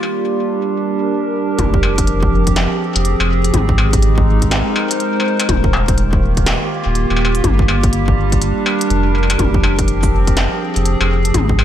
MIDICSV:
0, 0, Header, 1, 5, 480
1, 0, Start_track
1, 0, Tempo, 487805
1, 1562, Time_signature, 4, 2, 24, 8
1, 11459, End_track
2, 0, Start_track
2, 0, Title_t, "Ambient pad"
2, 0, Program_c, 0, 92
2, 0, Note_on_c, 0, 55, 85
2, 0, Note_on_c, 0, 58, 78
2, 0, Note_on_c, 0, 62, 79
2, 0, Note_on_c, 0, 65, 73
2, 0, Note_on_c, 0, 67, 88
2, 421, Note_off_c, 0, 58, 0
2, 421, Note_off_c, 0, 65, 0
2, 529, Note_on_c, 0, 70, 75
2, 1561, Note_on_c, 0, 53, 81
2, 1562, Note_off_c, 0, 55, 0
2, 1827, Note_on_c, 0, 60, 85
2, 2341, Note_off_c, 0, 62, 0
2, 2341, Note_off_c, 0, 70, 0
2, 2449, Note_on_c, 0, 68, 78
2, 3481, Note_off_c, 0, 53, 0
2, 3481, Note_on_c, 0, 56, 74
2, 3677, Note_on_c, 0, 63, 90
2, 4254, Note_on_c, 0, 70, 92
2, 4261, Note_off_c, 0, 60, 0
2, 4261, Note_off_c, 0, 67, 0
2, 4261, Note_off_c, 0, 68, 0
2, 4368, Note_on_c, 0, 72, 79
2, 5400, Note_on_c, 0, 51, 79
2, 5401, Note_off_c, 0, 56, 0
2, 5777, Note_on_c, 0, 67, 84
2, 5807, Note_on_c, 0, 58, 87
2, 6079, Note_on_c, 0, 65, 71
2, 6180, Note_off_c, 0, 70, 0
2, 6181, Note_off_c, 0, 63, 0
2, 6181, Note_off_c, 0, 72, 0
2, 7319, Note_on_c, 0, 55, 87
2, 7321, Note_off_c, 0, 51, 0
2, 7718, Note_on_c, 0, 62, 84
2, 8100, Note_off_c, 0, 65, 0
2, 8101, Note_off_c, 0, 58, 0
2, 8209, Note_on_c, 0, 70, 71
2, 9240, Note_off_c, 0, 55, 0
2, 9241, Note_on_c, 0, 53, 69
2, 9401, Note_on_c, 0, 60, 80
2, 10020, Note_off_c, 0, 62, 0
2, 10021, Note_off_c, 0, 70, 0
2, 10129, Note_on_c, 0, 68, 74
2, 11161, Note_off_c, 0, 53, 0
2, 11163, Note_on_c, 0, 56, 85
2, 11286, Note_on_c, 0, 63, 73
2, 11459, Note_off_c, 0, 56, 0
2, 11459, Note_off_c, 0, 60, 0
2, 11459, Note_off_c, 0, 63, 0
2, 11459, Note_off_c, 0, 67, 0
2, 11459, Note_off_c, 0, 68, 0
2, 11459, End_track
3, 0, Start_track
3, 0, Title_t, "Sub bass"
3, 0, Program_c, 1, 38
3, 1561, Note_on_c, 1, 29, 101
3, 2631, Note_off_c, 1, 29, 0
3, 2910, Note_on_c, 1, 29, 91
3, 3102, Note_off_c, 1, 29, 0
3, 3150, Note_on_c, 1, 29, 83
3, 3458, Note_off_c, 1, 29, 0
3, 3481, Note_on_c, 1, 32, 101
3, 4551, Note_off_c, 1, 32, 0
3, 5401, Note_on_c, 1, 27, 100
3, 6471, Note_off_c, 1, 27, 0
3, 6750, Note_on_c, 1, 27, 92
3, 6942, Note_off_c, 1, 27, 0
3, 6990, Note_on_c, 1, 27, 83
3, 7298, Note_off_c, 1, 27, 0
3, 7321, Note_on_c, 1, 31, 102
3, 8391, Note_off_c, 1, 31, 0
3, 8762, Note_on_c, 1, 29, 102
3, 9218, Note_off_c, 1, 29, 0
3, 9242, Note_on_c, 1, 29, 101
3, 10312, Note_off_c, 1, 29, 0
3, 10590, Note_on_c, 1, 29, 90
3, 10782, Note_off_c, 1, 29, 0
3, 10831, Note_on_c, 1, 29, 82
3, 11138, Note_off_c, 1, 29, 0
3, 11161, Note_on_c, 1, 32, 102
3, 11459, Note_off_c, 1, 32, 0
3, 11459, End_track
4, 0, Start_track
4, 0, Title_t, "Struck metal"
4, 29, Note_on_c, 9, 60, 34
4, 127, Note_off_c, 9, 60, 0
4, 1801, Note_on_c, 9, 60, 84
4, 1899, Note_off_c, 9, 60, 0
4, 3149, Note_on_c, 9, 60, 86
4, 3248, Note_off_c, 9, 60, 0
4, 3720, Note_on_c, 9, 60, 80
4, 3819, Note_off_c, 9, 60, 0
4, 4681, Note_on_c, 9, 60, 79
4, 4779, Note_off_c, 9, 60, 0
4, 5115, Note_on_c, 9, 60, 55
4, 5213, Note_off_c, 9, 60, 0
4, 5309, Note_on_c, 9, 60, 82
4, 5408, Note_off_c, 9, 60, 0
4, 5641, Note_on_c, 9, 60, 80
4, 5739, Note_off_c, 9, 60, 0
4, 6990, Note_on_c, 9, 60, 36
4, 7050, Note_off_c, 9, 60, 0
4, 7050, Note_on_c, 9, 60, 48
4, 7131, Note_off_c, 9, 60, 0
4, 7131, Note_on_c, 9, 60, 64
4, 7230, Note_off_c, 9, 60, 0
4, 7561, Note_on_c, 9, 60, 77
4, 7659, Note_off_c, 9, 60, 0
4, 8521, Note_on_c, 9, 60, 76
4, 8620, Note_off_c, 9, 60, 0
4, 9002, Note_on_c, 9, 60, 23
4, 9081, Note_off_c, 9, 60, 0
4, 9081, Note_on_c, 9, 60, 31
4, 9150, Note_off_c, 9, 60, 0
4, 9150, Note_on_c, 9, 60, 76
4, 9161, Note_off_c, 9, 60, 0
4, 9161, Note_on_c, 9, 60, 40
4, 9260, Note_off_c, 9, 60, 0
4, 9481, Note_on_c, 9, 60, 78
4, 9579, Note_off_c, 9, 60, 0
4, 10830, Note_on_c, 9, 60, 78
4, 10928, Note_off_c, 9, 60, 0
4, 11402, Note_on_c, 9, 60, 81
4, 11459, Note_off_c, 9, 60, 0
4, 11459, End_track
5, 0, Start_track
5, 0, Title_t, "Drums"
5, 1560, Note_on_c, 9, 42, 56
5, 1560, Note_on_c, 9, 48, 92
5, 1561, Note_on_c, 9, 36, 102
5, 1659, Note_off_c, 9, 36, 0
5, 1659, Note_off_c, 9, 42, 0
5, 1659, Note_off_c, 9, 48, 0
5, 1710, Note_on_c, 9, 36, 106
5, 1808, Note_off_c, 9, 36, 0
5, 1949, Note_on_c, 9, 42, 69
5, 1950, Note_on_c, 9, 36, 122
5, 2040, Note_off_c, 9, 42, 0
5, 2040, Note_on_c, 9, 42, 56
5, 2048, Note_off_c, 9, 36, 0
5, 2139, Note_off_c, 9, 42, 0
5, 2190, Note_on_c, 9, 36, 120
5, 2288, Note_off_c, 9, 36, 0
5, 2429, Note_on_c, 9, 42, 68
5, 2430, Note_on_c, 9, 36, 84
5, 2521, Note_off_c, 9, 42, 0
5, 2521, Note_on_c, 9, 38, 123
5, 2521, Note_on_c, 9, 42, 55
5, 2528, Note_off_c, 9, 36, 0
5, 2619, Note_off_c, 9, 38, 0
5, 2619, Note_off_c, 9, 42, 0
5, 2909, Note_on_c, 9, 42, 70
5, 3000, Note_off_c, 9, 42, 0
5, 3000, Note_on_c, 9, 42, 56
5, 3099, Note_off_c, 9, 42, 0
5, 3390, Note_on_c, 9, 42, 69
5, 3481, Note_off_c, 9, 42, 0
5, 3481, Note_on_c, 9, 36, 108
5, 3481, Note_on_c, 9, 42, 56
5, 3481, Note_on_c, 9, 48, 88
5, 3579, Note_off_c, 9, 36, 0
5, 3579, Note_off_c, 9, 42, 0
5, 3579, Note_off_c, 9, 48, 0
5, 3630, Note_on_c, 9, 36, 112
5, 3728, Note_off_c, 9, 36, 0
5, 3869, Note_on_c, 9, 42, 70
5, 3870, Note_on_c, 9, 36, 126
5, 3960, Note_off_c, 9, 42, 0
5, 3960, Note_on_c, 9, 42, 58
5, 3968, Note_off_c, 9, 36, 0
5, 4059, Note_off_c, 9, 42, 0
5, 4110, Note_on_c, 9, 36, 119
5, 4208, Note_off_c, 9, 36, 0
5, 4349, Note_on_c, 9, 42, 70
5, 4350, Note_on_c, 9, 36, 88
5, 4441, Note_off_c, 9, 42, 0
5, 4441, Note_on_c, 9, 38, 126
5, 4441, Note_on_c, 9, 42, 56
5, 4448, Note_off_c, 9, 36, 0
5, 4539, Note_off_c, 9, 38, 0
5, 4539, Note_off_c, 9, 42, 0
5, 4829, Note_on_c, 9, 42, 72
5, 4921, Note_off_c, 9, 42, 0
5, 4921, Note_on_c, 9, 42, 53
5, 5019, Note_off_c, 9, 42, 0
5, 5309, Note_on_c, 9, 42, 70
5, 5401, Note_off_c, 9, 42, 0
5, 5401, Note_on_c, 9, 36, 110
5, 5401, Note_on_c, 9, 42, 55
5, 5401, Note_on_c, 9, 48, 88
5, 5499, Note_off_c, 9, 36, 0
5, 5499, Note_off_c, 9, 42, 0
5, 5499, Note_off_c, 9, 48, 0
5, 5550, Note_on_c, 9, 36, 115
5, 5648, Note_off_c, 9, 36, 0
5, 5790, Note_on_c, 9, 36, 127
5, 5790, Note_on_c, 9, 42, 68
5, 5881, Note_off_c, 9, 42, 0
5, 5881, Note_on_c, 9, 42, 54
5, 5888, Note_off_c, 9, 36, 0
5, 5980, Note_off_c, 9, 42, 0
5, 6030, Note_on_c, 9, 36, 126
5, 6128, Note_off_c, 9, 36, 0
5, 6269, Note_on_c, 9, 42, 69
5, 6270, Note_on_c, 9, 36, 88
5, 6361, Note_off_c, 9, 42, 0
5, 6361, Note_on_c, 9, 38, 127
5, 6361, Note_on_c, 9, 42, 55
5, 6368, Note_off_c, 9, 36, 0
5, 6459, Note_off_c, 9, 38, 0
5, 6459, Note_off_c, 9, 42, 0
5, 6841, Note_on_c, 9, 42, 54
5, 6940, Note_off_c, 9, 42, 0
5, 7230, Note_on_c, 9, 42, 68
5, 7321, Note_off_c, 9, 42, 0
5, 7321, Note_on_c, 9, 36, 111
5, 7321, Note_on_c, 9, 42, 52
5, 7321, Note_on_c, 9, 48, 90
5, 7419, Note_off_c, 9, 36, 0
5, 7420, Note_off_c, 9, 42, 0
5, 7420, Note_off_c, 9, 48, 0
5, 7470, Note_on_c, 9, 36, 112
5, 7568, Note_off_c, 9, 36, 0
5, 7710, Note_on_c, 9, 36, 127
5, 7710, Note_on_c, 9, 42, 68
5, 7801, Note_off_c, 9, 42, 0
5, 7801, Note_on_c, 9, 42, 52
5, 7808, Note_off_c, 9, 36, 0
5, 7900, Note_off_c, 9, 42, 0
5, 7950, Note_on_c, 9, 36, 121
5, 8049, Note_off_c, 9, 36, 0
5, 8190, Note_on_c, 9, 36, 87
5, 8190, Note_on_c, 9, 42, 66
5, 8281, Note_off_c, 9, 42, 0
5, 8281, Note_on_c, 9, 42, 54
5, 8289, Note_off_c, 9, 36, 0
5, 8379, Note_off_c, 9, 42, 0
5, 8671, Note_on_c, 9, 42, 68
5, 8762, Note_off_c, 9, 42, 0
5, 8762, Note_on_c, 9, 42, 52
5, 8860, Note_off_c, 9, 42, 0
5, 9150, Note_on_c, 9, 42, 67
5, 9241, Note_off_c, 9, 42, 0
5, 9241, Note_on_c, 9, 42, 50
5, 9241, Note_on_c, 9, 48, 94
5, 9242, Note_on_c, 9, 36, 104
5, 9340, Note_off_c, 9, 36, 0
5, 9340, Note_off_c, 9, 42, 0
5, 9340, Note_off_c, 9, 48, 0
5, 9391, Note_on_c, 9, 36, 109
5, 9489, Note_off_c, 9, 36, 0
5, 9630, Note_on_c, 9, 42, 63
5, 9631, Note_on_c, 9, 36, 123
5, 9721, Note_off_c, 9, 42, 0
5, 9721, Note_on_c, 9, 42, 52
5, 9729, Note_off_c, 9, 36, 0
5, 9820, Note_off_c, 9, 42, 0
5, 9870, Note_on_c, 9, 69, 84
5, 9871, Note_on_c, 9, 36, 119
5, 9968, Note_off_c, 9, 69, 0
5, 9969, Note_off_c, 9, 36, 0
5, 10110, Note_on_c, 9, 36, 86
5, 10110, Note_on_c, 9, 42, 66
5, 10201, Note_off_c, 9, 42, 0
5, 10201, Note_on_c, 9, 38, 121
5, 10201, Note_on_c, 9, 42, 52
5, 10209, Note_off_c, 9, 36, 0
5, 10300, Note_off_c, 9, 38, 0
5, 10300, Note_off_c, 9, 42, 0
5, 10590, Note_on_c, 9, 42, 63
5, 10681, Note_off_c, 9, 42, 0
5, 10681, Note_on_c, 9, 42, 51
5, 10780, Note_off_c, 9, 42, 0
5, 11070, Note_on_c, 9, 42, 63
5, 11161, Note_on_c, 9, 36, 104
5, 11162, Note_off_c, 9, 42, 0
5, 11162, Note_on_c, 9, 42, 50
5, 11162, Note_on_c, 9, 48, 98
5, 11260, Note_off_c, 9, 36, 0
5, 11260, Note_off_c, 9, 42, 0
5, 11260, Note_off_c, 9, 48, 0
5, 11310, Note_on_c, 9, 36, 104
5, 11408, Note_off_c, 9, 36, 0
5, 11459, End_track
0, 0, End_of_file